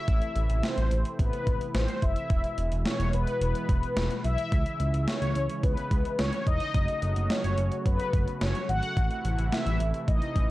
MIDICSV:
0, 0, Header, 1, 5, 480
1, 0, Start_track
1, 0, Tempo, 555556
1, 67, Time_signature, 4, 2, 24, 8
1, 9079, End_track
2, 0, Start_track
2, 0, Title_t, "Analog polysynth"
2, 0, Program_c, 0, 90
2, 0, Note_on_c, 0, 76, 103
2, 550, Note_on_c, 0, 72, 94
2, 569, Note_off_c, 0, 76, 0
2, 1029, Note_on_c, 0, 71, 91
2, 1043, Note_off_c, 0, 72, 0
2, 1508, Note_on_c, 0, 72, 93
2, 1523, Note_off_c, 0, 71, 0
2, 1748, Note_on_c, 0, 76, 104
2, 1755, Note_off_c, 0, 72, 0
2, 2433, Note_off_c, 0, 76, 0
2, 2469, Note_on_c, 0, 73, 91
2, 2692, Note_off_c, 0, 73, 0
2, 2710, Note_on_c, 0, 71, 90
2, 2936, Note_off_c, 0, 71, 0
2, 2947, Note_on_c, 0, 71, 95
2, 3667, Note_on_c, 0, 76, 106
2, 3689, Note_off_c, 0, 71, 0
2, 4387, Note_on_c, 0, 73, 101
2, 4409, Note_off_c, 0, 76, 0
2, 4868, Note_on_c, 0, 71, 95
2, 4882, Note_off_c, 0, 73, 0
2, 5348, Note_on_c, 0, 73, 101
2, 5362, Note_off_c, 0, 71, 0
2, 5571, Note_off_c, 0, 73, 0
2, 5587, Note_on_c, 0, 75, 109
2, 6308, Note_on_c, 0, 73, 101
2, 6329, Note_off_c, 0, 75, 0
2, 6789, Note_on_c, 0, 71, 100
2, 6802, Note_off_c, 0, 73, 0
2, 7269, Note_on_c, 0, 73, 99
2, 7283, Note_off_c, 0, 71, 0
2, 7507, Note_on_c, 0, 78, 118
2, 7516, Note_off_c, 0, 73, 0
2, 8229, Note_on_c, 0, 76, 108
2, 8249, Note_off_c, 0, 78, 0
2, 8674, Note_off_c, 0, 76, 0
2, 8708, Note_on_c, 0, 75, 102
2, 9079, Note_off_c, 0, 75, 0
2, 9079, End_track
3, 0, Start_track
3, 0, Title_t, "Analog synth pad"
3, 0, Program_c, 1, 89
3, 0, Note_on_c, 1, 57, 75
3, 68, Note_on_c, 1, 48, 81
3, 68, Note_on_c, 1, 52, 74
3, 68, Note_on_c, 1, 64, 90
3, 1953, Note_off_c, 1, 57, 0
3, 1969, Note_off_c, 1, 48, 0
3, 1986, Note_on_c, 1, 56, 76
3, 1987, Note_on_c, 1, 47, 84
3, 3888, Note_off_c, 1, 47, 0
3, 3888, Note_off_c, 1, 56, 0
3, 3909, Note_on_c, 1, 49, 84
3, 3909, Note_on_c, 1, 56, 76
3, 5793, Note_off_c, 1, 52, 0
3, 5793, Note_off_c, 1, 64, 0
3, 5809, Note_off_c, 1, 49, 0
3, 5809, Note_off_c, 1, 56, 0
3, 5827, Note_on_c, 1, 49, 86
3, 5827, Note_on_c, 1, 57, 78
3, 5828, Note_on_c, 1, 54, 77
3, 5828, Note_on_c, 1, 66, 93
3, 7728, Note_off_c, 1, 49, 0
3, 7728, Note_off_c, 1, 66, 0
3, 7729, Note_off_c, 1, 54, 0
3, 7750, Note_on_c, 1, 48, 84
3, 7751, Note_on_c, 1, 52, 78
3, 7751, Note_on_c, 1, 64, 90
3, 9079, Note_off_c, 1, 48, 0
3, 9079, Note_off_c, 1, 52, 0
3, 9079, Note_off_c, 1, 57, 0
3, 9079, Note_off_c, 1, 64, 0
3, 9079, End_track
4, 0, Start_track
4, 0, Title_t, "Analog synth bass"
4, 0, Program_c, 2, 38
4, 69, Note_on_c, 2, 33, 111
4, 176, Note_off_c, 2, 33, 0
4, 308, Note_on_c, 2, 33, 101
4, 416, Note_off_c, 2, 33, 0
4, 427, Note_on_c, 2, 33, 97
4, 535, Note_off_c, 2, 33, 0
4, 669, Note_on_c, 2, 33, 95
4, 776, Note_off_c, 2, 33, 0
4, 788, Note_on_c, 2, 33, 100
4, 896, Note_off_c, 2, 33, 0
4, 1030, Note_on_c, 2, 33, 108
4, 1137, Note_off_c, 2, 33, 0
4, 1269, Note_on_c, 2, 33, 95
4, 1376, Note_off_c, 2, 33, 0
4, 1509, Note_on_c, 2, 33, 105
4, 1616, Note_off_c, 2, 33, 0
4, 1749, Note_on_c, 2, 30, 92
4, 1856, Note_off_c, 2, 30, 0
4, 1988, Note_on_c, 2, 28, 102
4, 2096, Note_off_c, 2, 28, 0
4, 2229, Note_on_c, 2, 28, 102
4, 2336, Note_off_c, 2, 28, 0
4, 2349, Note_on_c, 2, 28, 98
4, 2456, Note_off_c, 2, 28, 0
4, 2588, Note_on_c, 2, 28, 96
4, 2695, Note_off_c, 2, 28, 0
4, 2709, Note_on_c, 2, 28, 99
4, 2816, Note_off_c, 2, 28, 0
4, 2947, Note_on_c, 2, 28, 112
4, 3055, Note_off_c, 2, 28, 0
4, 3188, Note_on_c, 2, 28, 95
4, 3296, Note_off_c, 2, 28, 0
4, 3426, Note_on_c, 2, 28, 106
4, 3535, Note_off_c, 2, 28, 0
4, 3667, Note_on_c, 2, 35, 89
4, 3775, Note_off_c, 2, 35, 0
4, 3907, Note_on_c, 2, 37, 105
4, 4015, Note_off_c, 2, 37, 0
4, 4146, Note_on_c, 2, 37, 103
4, 4254, Note_off_c, 2, 37, 0
4, 4267, Note_on_c, 2, 37, 87
4, 4375, Note_off_c, 2, 37, 0
4, 4506, Note_on_c, 2, 37, 91
4, 4615, Note_off_c, 2, 37, 0
4, 4627, Note_on_c, 2, 37, 105
4, 4735, Note_off_c, 2, 37, 0
4, 4868, Note_on_c, 2, 37, 113
4, 4976, Note_off_c, 2, 37, 0
4, 5108, Note_on_c, 2, 37, 95
4, 5215, Note_off_c, 2, 37, 0
4, 5348, Note_on_c, 2, 37, 100
4, 5456, Note_off_c, 2, 37, 0
4, 5587, Note_on_c, 2, 28, 94
4, 5695, Note_off_c, 2, 28, 0
4, 5827, Note_on_c, 2, 30, 108
4, 5935, Note_off_c, 2, 30, 0
4, 6068, Note_on_c, 2, 30, 99
4, 6176, Note_off_c, 2, 30, 0
4, 6188, Note_on_c, 2, 30, 105
4, 6296, Note_off_c, 2, 30, 0
4, 6428, Note_on_c, 2, 30, 92
4, 6536, Note_off_c, 2, 30, 0
4, 6548, Note_on_c, 2, 30, 96
4, 6655, Note_off_c, 2, 30, 0
4, 6788, Note_on_c, 2, 30, 104
4, 6896, Note_off_c, 2, 30, 0
4, 7028, Note_on_c, 2, 30, 96
4, 7136, Note_off_c, 2, 30, 0
4, 7268, Note_on_c, 2, 30, 99
4, 7376, Note_off_c, 2, 30, 0
4, 7508, Note_on_c, 2, 32, 95
4, 7616, Note_off_c, 2, 32, 0
4, 7749, Note_on_c, 2, 33, 116
4, 7856, Note_off_c, 2, 33, 0
4, 7988, Note_on_c, 2, 33, 102
4, 8096, Note_off_c, 2, 33, 0
4, 8107, Note_on_c, 2, 33, 96
4, 8215, Note_off_c, 2, 33, 0
4, 8347, Note_on_c, 2, 33, 96
4, 8455, Note_off_c, 2, 33, 0
4, 8468, Note_on_c, 2, 33, 102
4, 8575, Note_off_c, 2, 33, 0
4, 8708, Note_on_c, 2, 33, 108
4, 8816, Note_off_c, 2, 33, 0
4, 8948, Note_on_c, 2, 33, 99
4, 9055, Note_off_c, 2, 33, 0
4, 9079, End_track
5, 0, Start_track
5, 0, Title_t, "Drums"
5, 68, Note_on_c, 9, 42, 80
5, 69, Note_on_c, 9, 36, 120
5, 154, Note_off_c, 9, 42, 0
5, 155, Note_off_c, 9, 36, 0
5, 186, Note_on_c, 9, 42, 51
5, 273, Note_off_c, 9, 42, 0
5, 307, Note_on_c, 9, 42, 66
5, 394, Note_off_c, 9, 42, 0
5, 429, Note_on_c, 9, 42, 55
5, 515, Note_off_c, 9, 42, 0
5, 548, Note_on_c, 9, 38, 114
5, 549, Note_on_c, 9, 42, 76
5, 634, Note_off_c, 9, 38, 0
5, 635, Note_off_c, 9, 42, 0
5, 671, Note_on_c, 9, 42, 61
5, 758, Note_off_c, 9, 42, 0
5, 788, Note_on_c, 9, 42, 71
5, 875, Note_off_c, 9, 42, 0
5, 909, Note_on_c, 9, 42, 43
5, 995, Note_off_c, 9, 42, 0
5, 1030, Note_on_c, 9, 36, 95
5, 1032, Note_on_c, 9, 42, 73
5, 1116, Note_off_c, 9, 36, 0
5, 1119, Note_off_c, 9, 42, 0
5, 1151, Note_on_c, 9, 42, 48
5, 1237, Note_off_c, 9, 42, 0
5, 1269, Note_on_c, 9, 36, 94
5, 1270, Note_on_c, 9, 42, 76
5, 1356, Note_off_c, 9, 36, 0
5, 1357, Note_off_c, 9, 42, 0
5, 1391, Note_on_c, 9, 42, 45
5, 1477, Note_off_c, 9, 42, 0
5, 1508, Note_on_c, 9, 42, 72
5, 1509, Note_on_c, 9, 38, 109
5, 1594, Note_off_c, 9, 42, 0
5, 1595, Note_off_c, 9, 38, 0
5, 1627, Note_on_c, 9, 42, 53
5, 1713, Note_off_c, 9, 42, 0
5, 1747, Note_on_c, 9, 42, 69
5, 1748, Note_on_c, 9, 36, 88
5, 1834, Note_off_c, 9, 42, 0
5, 1835, Note_off_c, 9, 36, 0
5, 1866, Note_on_c, 9, 42, 51
5, 1953, Note_off_c, 9, 42, 0
5, 1987, Note_on_c, 9, 42, 77
5, 1988, Note_on_c, 9, 36, 115
5, 2073, Note_off_c, 9, 42, 0
5, 2074, Note_off_c, 9, 36, 0
5, 2107, Note_on_c, 9, 42, 50
5, 2194, Note_off_c, 9, 42, 0
5, 2227, Note_on_c, 9, 42, 66
5, 2313, Note_off_c, 9, 42, 0
5, 2347, Note_on_c, 9, 42, 54
5, 2434, Note_off_c, 9, 42, 0
5, 2467, Note_on_c, 9, 38, 111
5, 2468, Note_on_c, 9, 42, 74
5, 2553, Note_off_c, 9, 38, 0
5, 2554, Note_off_c, 9, 42, 0
5, 2591, Note_on_c, 9, 42, 58
5, 2677, Note_off_c, 9, 42, 0
5, 2707, Note_on_c, 9, 42, 71
5, 2793, Note_off_c, 9, 42, 0
5, 2828, Note_on_c, 9, 42, 45
5, 2914, Note_off_c, 9, 42, 0
5, 2950, Note_on_c, 9, 42, 73
5, 3037, Note_off_c, 9, 42, 0
5, 3069, Note_on_c, 9, 42, 48
5, 3155, Note_off_c, 9, 42, 0
5, 3188, Note_on_c, 9, 36, 90
5, 3189, Note_on_c, 9, 42, 73
5, 3275, Note_off_c, 9, 36, 0
5, 3275, Note_off_c, 9, 42, 0
5, 3310, Note_on_c, 9, 42, 44
5, 3397, Note_off_c, 9, 42, 0
5, 3427, Note_on_c, 9, 42, 73
5, 3428, Note_on_c, 9, 38, 112
5, 3514, Note_off_c, 9, 38, 0
5, 3514, Note_off_c, 9, 42, 0
5, 3547, Note_on_c, 9, 42, 51
5, 3633, Note_off_c, 9, 42, 0
5, 3668, Note_on_c, 9, 42, 69
5, 3754, Note_off_c, 9, 42, 0
5, 3786, Note_on_c, 9, 42, 52
5, 3872, Note_off_c, 9, 42, 0
5, 3906, Note_on_c, 9, 42, 79
5, 3907, Note_on_c, 9, 36, 116
5, 3993, Note_off_c, 9, 36, 0
5, 3993, Note_off_c, 9, 42, 0
5, 4026, Note_on_c, 9, 42, 52
5, 4112, Note_off_c, 9, 42, 0
5, 4147, Note_on_c, 9, 42, 67
5, 4233, Note_off_c, 9, 42, 0
5, 4268, Note_on_c, 9, 42, 54
5, 4354, Note_off_c, 9, 42, 0
5, 4387, Note_on_c, 9, 38, 111
5, 4388, Note_on_c, 9, 42, 74
5, 4473, Note_off_c, 9, 38, 0
5, 4474, Note_off_c, 9, 42, 0
5, 4510, Note_on_c, 9, 42, 59
5, 4596, Note_off_c, 9, 42, 0
5, 4626, Note_on_c, 9, 42, 70
5, 4712, Note_off_c, 9, 42, 0
5, 4748, Note_on_c, 9, 42, 44
5, 4834, Note_off_c, 9, 42, 0
5, 4868, Note_on_c, 9, 36, 94
5, 4869, Note_on_c, 9, 42, 73
5, 4954, Note_off_c, 9, 36, 0
5, 4955, Note_off_c, 9, 42, 0
5, 4988, Note_on_c, 9, 42, 48
5, 5075, Note_off_c, 9, 42, 0
5, 5108, Note_on_c, 9, 36, 91
5, 5108, Note_on_c, 9, 42, 74
5, 5194, Note_off_c, 9, 36, 0
5, 5195, Note_off_c, 9, 42, 0
5, 5229, Note_on_c, 9, 42, 46
5, 5315, Note_off_c, 9, 42, 0
5, 5347, Note_on_c, 9, 38, 108
5, 5347, Note_on_c, 9, 42, 74
5, 5433, Note_off_c, 9, 42, 0
5, 5434, Note_off_c, 9, 38, 0
5, 5467, Note_on_c, 9, 42, 52
5, 5553, Note_off_c, 9, 42, 0
5, 5587, Note_on_c, 9, 42, 66
5, 5588, Note_on_c, 9, 36, 90
5, 5673, Note_off_c, 9, 42, 0
5, 5674, Note_off_c, 9, 36, 0
5, 5704, Note_on_c, 9, 42, 51
5, 5791, Note_off_c, 9, 42, 0
5, 5827, Note_on_c, 9, 36, 118
5, 5828, Note_on_c, 9, 42, 78
5, 5914, Note_off_c, 9, 36, 0
5, 5914, Note_off_c, 9, 42, 0
5, 5946, Note_on_c, 9, 42, 52
5, 6032, Note_off_c, 9, 42, 0
5, 6067, Note_on_c, 9, 42, 66
5, 6153, Note_off_c, 9, 42, 0
5, 6187, Note_on_c, 9, 42, 54
5, 6274, Note_off_c, 9, 42, 0
5, 6307, Note_on_c, 9, 38, 111
5, 6309, Note_on_c, 9, 42, 76
5, 6394, Note_off_c, 9, 38, 0
5, 6395, Note_off_c, 9, 42, 0
5, 6430, Note_on_c, 9, 42, 61
5, 6516, Note_off_c, 9, 42, 0
5, 6546, Note_on_c, 9, 42, 72
5, 6632, Note_off_c, 9, 42, 0
5, 6667, Note_on_c, 9, 42, 44
5, 6753, Note_off_c, 9, 42, 0
5, 6788, Note_on_c, 9, 36, 100
5, 6789, Note_on_c, 9, 42, 72
5, 6874, Note_off_c, 9, 36, 0
5, 6875, Note_off_c, 9, 42, 0
5, 6908, Note_on_c, 9, 42, 50
5, 6995, Note_off_c, 9, 42, 0
5, 7028, Note_on_c, 9, 36, 93
5, 7029, Note_on_c, 9, 42, 71
5, 7114, Note_off_c, 9, 36, 0
5, 7115, Note_off_c, 9, 42, 0
5, 7150, Note_on_c, 9, 42, 45
5, 7237, Note_off_c, 9, 42, 0
5, 7268, Note_on_c, 9, 42, 76
5, 7269, Note_on_c, 9, 38, 107
5, 7355, Note_off_c, 9, 42, 0
5, 7356, Note_off_c, 9, 38, 0
5, 7388, Note_on_c, 9, 42, 50
5, 7474, Note_off_c, 9, 42, 0
5, 7509, Note_on_c, 9, 42, 71
5, 7596, Note_off_c, 9, 42, 0
5, 7627, Note_on_c, 9, 42, 52
5, 7713, Note_off_c, 9, 42, 0
5, 7748, Note_on_c, 9, 36, 119
5, 7749, Note_on_c, 9, 42, 81
5, 7835, Note_off_c, 9, 36, 0
5, 7835, Note_off_c, 9, 42, 0
5, 7868, Note_on_c, 9, 42, 51
5, 7954, Note_off_c, 9, 42, 0
5, 7989, Note_on_c, 9, 42, 70
5, 8075, Note_off_c, 9, 42, 0
5, 8109, Note_on_c, 9, 42, 56
5, 8195, Note_off_c, 9, 42, 0
5, 8229, Note_on_c, 9, 38, 112
5, 8230, Note_on_c, 9, 42, 76
5, 8315, Note_off_c, 9, 38, 0
5, 8317, Note_off_c, 9, 42, 0
5, 8351, Note_on_c, 9, 42, 61
5, 8437, Note_off_c, 9, 42, 0
5, 8469, Note_on_c, 9, 42, 72
5, 8555, Note_off_c, 9, 42, 0
5, 8589, Note_on_c, 9, 42, 43
5, 8675, Note_off_c, 9, 42, 0
5, 8709, Note_on_c, 9, 36, 98
5, 8711, Note_on_c, 9, 42, 74
5, 8795, Note_off_c, 9, 36, 0
5, 8797, Note_off_c, 9, 42, 0
5, 8829, Note_on_c, 9, 42, 49
5, 8915, Note_off_c, 9, 42, 0
5, 8948, Note_on_c, 9, 36, 92
5, 8949, Note_on_c, 9, 42, 73
5, 9034, Note_off_c, 9, 36, 0
5, 9035, Note_off_c, 9, 42, 0
5, 9079, End_track
0, 0, End_of_file